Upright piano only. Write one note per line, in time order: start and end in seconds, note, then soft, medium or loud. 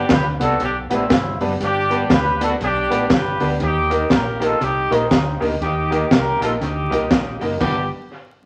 0.40 0.51 B3 medium
0.40 0.51 D4 medium
0.40 0.51 G4 medium
0.40 0.52 B4 medium
0.90 1.01 B3 loud
0.90 1.02 D4 medium
0.90 1.02 G4 medium
0.90 1.02 B4 loud
1.41 1.52 B3 medium
1.41 1.52 D4 medium
1.41 1.52 G4 medium
1.41 1.52 B4 loud
1.90 2.01 B3 medium
1.90 2.01 D4 medium
1.90 2.02 G4 medium
1.90 2.02 B4 loud
2.40 2.51 B3 medium
2.40 2.52 D4 medium
2.40 2.52 G4 medium
2.40 2.52 B4 loud
2.90 3.01 B3 medium
2.90 3.02 D4 medium
2.90 3.02 G4 medium
2.90 3.02 B4 loud
3.40 3.51 B3 medium
3.40 3.51 D4 medium
3.40 3.52 G4 medium
3.40 3.52 B4 loud
3.89 4.01 A#3 medium
3.89 4.01 D#4 medium
3.89 4.01 G4 medium
3.89 4.02 A#4 loud
4.40 4.51 A#3 medium
4.40 4.51 D#4 medium
4.40 4.52 G4 medium
4.40 4.52 A#4 loud
4.90 5.02 A#3 loud
4.90 5.02 D#4 medium
4.90 5.02 G4 medium
4.90 5.02 A#4 loud
5.40 5.51 A#3 medium
5.40 5.51 D#4 medium
5.40 5.52 G4 medium
5.40 5.52 A#4 loud
5.90 6.02 A#3 medium
5.90 6.02 D#4 medium
5.90 6.02 G4 medium
5.90 6.02 A#4 medium
6.40 6.51 A#3 medium
6.40 6.52 D#4 medium
6.40 6.52 G4 medium
6.40 6.52 A#4 loud
6.90 7.02 A#3 medium
6.90 7.02 D#4 medium
6.90 7.02 G4 medium
6.90 7.02 A#4 loud
7.41 7.52 A#3 medium
7.41 7.52 D#4 medium
7.41 7.52 G4 medium
7.41 7.52 A#4 loud
7.60 7.83 B3 medium
7.60 7.83 D4 medium
7.60 7.83 G4 medium
7.60 7.83 B4 loud